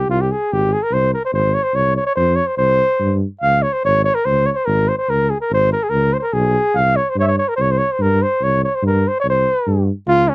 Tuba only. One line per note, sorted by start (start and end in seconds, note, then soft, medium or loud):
0.08 0.31 C2 medium
0.52 0.74 G#1 medium
0.91 1.14 C2 medium
1.33 1.56 G#1 medium
1.73 1.97 C2 medium
2.16 2.40 F2 medium
2.57 2.81 C2 medium
3.00 3.23 G2 medium
3.42 3.65 C#2 medium
3.84 4.07 G#1 medium
4.26 4.49 C#2 medium
4.67 4.90 G#1 medium
5.08 5.31 C#2 medium
5.50 5.73 G#1 medium
5.91 6.14 C#2 medium
6.33 6.56 B1 loud
6.74 6.98 C2 medium
7.15 7.39 G2 medium
7.58 7.81 C2 medium
7.99 8.22 G2 loud
8.41 8.64 C2 medium
8.82 9.05 G2 loud
9.24 9.47 C2 medium
9.67 9.89 G2 loud
10.07 10.30 C#2 medium